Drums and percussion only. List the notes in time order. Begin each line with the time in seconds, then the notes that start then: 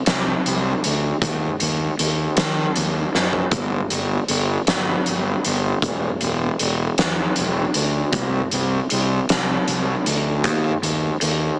0.06 snare, closed hi-hat
0.46 closed hi-hat
0.84 closed hi-hat
1.22 kick, closed hi-hat
1.60 closed hi-hat
1.99 closed hi-hat
2.37 snare, closed hi-hat
2.76 closed hi-hat
3.15 snare
3.33 floor tom
3.51 kick, closed hi-hat
3.90 closed hi-hat
4.28 closed hi-hat
4.67 snare, closed hi-hat
5.06 closed hi-hat
5.45 closed hi-hat
5.82 kick, closed hi-hat
6.21 closed hi-hat
6.59 closed hi-hat
6.98 snare, closed hi-hat
7.36 closed hi-hat
7.74 closed hi-hat
8.13 kick, closed hi-hat
8.51 closed hi-hat
8.90 closed hi-hat
9.29 snare, closed hi-hat
9.68 closed hi-hat
10.06 closed hi-hat
10.44 kick, closed hi-hat
10.83 closed hi-hat
11.21 closed hi-hat